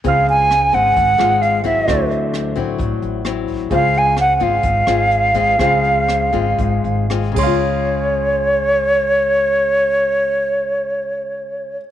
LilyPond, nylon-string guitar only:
\new Staff \with { instrumentName = "Nylon-string guitar" } { \time 4/4 \key des \major \tempo 4 = 124 << { <aes c' f'>4 r8 <aes c'>4 <aes c' f'>4 <ges c' fes'>8~ | <ges c' fes'>4. <fis c' e'>4. <fis c' e'>4 | <aes c' f'>4 r8 <aes c' f'>4 <aes c' f'>4 <aes c' f'>8 | <aes c' f'>4. <aes c' f'>4. <aes c' f'>8 <des aes f'>8~ |
<des aes f'>1~ | <des aes f'>1 | } \\ { des2 aes,2 | d2 a,2 | des2 aes,2 | des2 aes,4. r8 |
r1 | r1 | } >> }